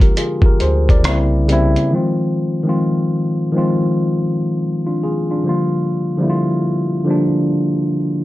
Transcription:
Already playing: tine electric piano D3 F3 G#3 A#3 C4 D#4 F4
0.00 tine electric piano G4 A#4, kick, closed hi-hat
0.17 tine electric piano F4 G#4, closed hi-hat
0.42 sub bass D2, tine electric piano A#4, kick
0.47 tine electric piano G4
0.60 sub bass D2, tine electric piano G#4 C5, closed hi-hat
0.89 tine electric piano A#4 D5, kick, closed hi-hat
1.03 sub bass C2, tine electric piano C#3 G3 A#3, cross-stick, closed hi-hat
1.07 tine electric piano C4 E4
1.47 tine electric piano C#3 G3 A#3, closed hi-hat
1.51 tine electric piano C4 E4
1.76 closed hi-hat
1.90 tine electric piano D#3 F3 G#3
1.95 tine electric piano C4 F4
2.63 tine electric piano D#3 F3 G#3
2.67 tine electric piano C4 F4
3.52 tine electric piano D#3 F3 G#3
3.56 tine electric piano C4 F4
4.86 tine electric piano D4 F4
5.03 tine electric piano F4 G#4
5.31 tine electric piano D4 F4
5.44 tine electric piano D3 F3 G3
5.48 tine electric piano A#3 F4
6.17 tine electric piano D3 F3 G3
6.22 tine electric piano A#3 E4
6.30 tine electric piano F4
7.05 tine electric piano D3 F3 G3
7.09 tine electric piano A#3 D4

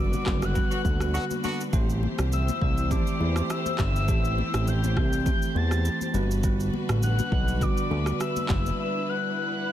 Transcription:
Already playing: analog synth bass F#1, marimba D3 G3 B3 F#4, string section G3 D4 F#4 B4
0.00 soft synth lead D6
0.13 high conga, shaker
0.26 analog synth bass F#1, marimba D3 G3 B3 F#4, kick, cross-stick, clap
0.42 soft synth lead F#6, cross-stick, shaker
0.55 marimba D3 G3 B3 F#4, kick, low conga, shaker
0.71 horn section D3 B3 F#4, shaker
0.85 analog synth bass D2, kick, high conga, shaker
1.00 marimba D3 G3 B3 F#4, cross-stick, shaker
1.14 horn section D3 B3 F#4, shaker
1.31 high conga, shaker
1.44 horn section D3 B3 F#4, high conga, shaker
1.61 shaker
1.73 analog synth bass A1, marimba E3 A3 C4 G4, string section A3 E4 G4 C5, kick, shaker
1.90 shaker
2.03 high conga
2.19 analog synth bass C2, cross-stick, shaker
2.32 soft synth lead E6, low conga, shaker
2.48 high conga, shaker
2.61 analog synth bass C2, marimba E3 A3 C4 G4, soft synth lead E6, kick
2.78 shaker
2.91 marimba E3 A3 C4 G4, soft synth lead D6, kick, low conga, shaker
3.07 shaker
3.20 analog synth bass E2, high conga
3.36 marimba E3 A3 C4 G4, cross-stick, shaker
3.50 soft synth lead E6, cross-stick, shaker
3.66 high conga, shaker
3.78 analog synth bass G1, soft synth lead E6, kick, cross-stick, clap, high conga, shaker
3.96 shaker
4.08 analog synth bass A1, marimba E3 A3 C4 G4, kick, shaker
4.25 shaker
4.38 high conga
4.54 analog synth bass A1, marimba E3 A3 C4 G4, cross-stick, shaker
4.68 soft synth lead G6, low conga, shaker
4.84 high conga, shaker
4.96 analog synth bass C2, marimba E3 A3 C4 G4, kick, cross-stick
5.13 shaker
5.25 marimba E3 A3 C4 G4, soft synth lead G6, kick, low conga, shaker
5.42 shaker
5.55 analog synth bass E2, soft synth lead A6, high conga
5.71 marimba E3 A3 C4 G4, cross-stick, shaker
5.85 shaker
6.01 high conga, shaker
6.14 analog synth bass G1, marimba D3 G3 B3 F#4, string section G3 D4 F#4 B4, high conga, shaker
6.31 shaker
6.43 marimba D3 G3 B3 F#4, kick, shaker
6.60 shaker
6.74 high conga
6.89 analog synth bass A1, cross-stick, shaker
7.03 soft synth lead F#6, low conga, shaker
7.19 high conga, shaker
7.32 analog synth bass B1, marimba D3 G3 B3 F#4, kick
7.48 shaker
7.61 marimba D3 G3 B3 F#4, soft synth lead D6, kick, low conga, shaker
7.77 shaker
7.91 analog synth bass D2, high conga
8.06 marimba D3 G3 B3 F#4, cross-stick, shaker
8.20 soft synth lead E6, cross-stick, shaker
8.36 high conga, shaker
8.49 analog synth bass F#1, string section E4, kick, cross-stick, clap, high conga, shaker
8.66 shaker
8.80 soft synth lead E6
9.09 soft synth lead F#6

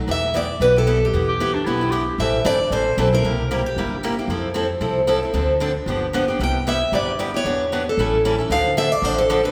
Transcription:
0.07 upright bass E2, steel-string acoustic guitar E3 B3 E4 G4
0.11 steel-string acoustic guitar E5
0.34 steel-string acoustic guitar E3 B3 E4 G4 D5
0.60 upright bass B1, steel-string acoustic guitar E3 B3 E4 G4 B4
0.76 steel-string acoustic guitar B3 E4 G4 A4
0.87 steel-string acoustic guitar E3 B3 E4 G4
1.05 steel-string acoustic guitar G4
1.13 upright bass E2, steel-string acoustic guitar E3 B3 E4 G4
1.28 clarinet G4
1.40 steel-string acoustic guitar E3 B3 E4 G4
1.54 clarinet D4
1.65 upright bass B1, steel-string acoustic guitar E3 B3 E4 G4, clarinet E4
1.81 steel-string acoustic guitar B3 E4 G4
1.91 steel-string acoustic guitar E3 B3 E4 G4, clarinet G4
2.18 upright bass A1, steel-string acoustic guitar E3 G3 C4 E4 A4 E5
2.45 upright bass G1, steel-string acoustic guitar E3 G3 C4 E4 A4 D5
2.70 upright bass A1, steel-string acoustic guitar E3 G3 C4 E4 A4 C5
2.97 upright bass B1, steel-string acoustic guitar E3 G3 C4 E4 A4
3.13 steel-string acoustic guitar C4 E4 A4 A#4
3.23 upright bass C2, steel-string acoustic guitar C3 G3 A#3 E4 G4
3.51 steel-string acoustic guitar C3 G3 A#3 E4 G4
3.66 steel-string acoustic guitar G4
3.76 upright bass G1, steel-string acoustic guitar C3 G3 A#3 E4 G4
4.03 steel-string acoustic guitar C3 G3 A#3 E4 G4
4.19 steel-string acoustic guitar A#3 E4 G4
4.28 upright bass F2, steel-string acoustic guitar F3 C4 E4 A4
4.54 steel-string acoustic guitar F3 C4 E4 A4
4.80 upright bass C2, steel-string acoustic guitar F3 C4 E4 A4
5.07 steel-string acoustic guitar F3 C4 E4 A4
5.23 steel-string acoustic guitar C4 E4 A4
5.34 upright bass D2, steel-string acoustic guitar D3 F3 C4 D4 A4
5.60 steel-string acoustic guitar D3 F3 C4 D4 A4
5.86 upright bass G1, steel-string acoustic guitar D3 F3 B3 D4 G4
6.13 steel-string acoustic guitar D3 F3 B3 D4 G4
6.28 steel-string acoustic guitar B3 D4 G4
6.39 upright bass C2, steel-string acoustic guitar C3 G3 B3 E4 G4
6.43 steel-string acoustic guitar G5
6.67 steel-string acoustic guitar C3 G3 B3 E4 G4 E5
6.92 upright bass G1, steel-string acoustic guitar C3 G3 B3 E4 G4 D5
7.19 steel-string acoustic guitar C3 G3 B3 E4 G4
7.34 steel-string acoustic guitar B3 E4 G4 C#5
7.45 upright bass E2, steel-string acoustic guitar E3 B3 D4 G4
7.72 steel-string acoustic guitar E3 B3 D4 G4
7.89 steel-string acoustic guitar A4
7.97 upright bass A1, steel-string acoustic guitar E3 G3 C#4 E4 A4
8.25 steel-string acoustic guitar E3 G3 C#4 E4 A4
8.38 steel-string acoustic guitar C#4 E4 A4
8.50 upright bass D2, steel-string acoustic guitar D3 F3 C4 D4 A4 F5
8.77 steel-string acoustic guitar D3 F3 C4 D4 A4 E5
8.92 steel-string acoustic guitar D5
9.02 upright bass A1, steel-string acoustic guitar D3 F3 C4 D4 A4 C5
9.18 steel-string acoustic guitar A4
9.30 steel-string acoustic guitar D3 F3 C4 D4 A4
9.43 steel-string acoustic guitar C4 D4 A4 B4

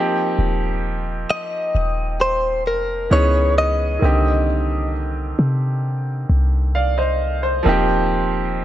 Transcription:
Already playing: grand piano F3 A#3 C4 D#4 G4
0.39 808-style bass D#1
1.30 clean electric guitar D#5
1.75 808-style bass D#1
2.21 clean electric guitar C5
2.66 808-style bass F1, clean electric guitar A#4
3.10 808-style bass C#2, grand piano E3 B3 C#4 D#4 G#4, clean electric guitar C#5
3.58 clean electric guitar D#5
3.99 808-style bass C2, grand piano D#3 A#3 C4
4.04 grand piano D3 G4
5.39 808-style bass C3
6.30 808-style bass C2
6.75 grand piano D5 F5
6.98 grand piano C5 D#5
7.43 grand piano C5
7.63 808-style bass D#1, grand piano F3 A#3 C4
7.67 grand piano D#4 G4

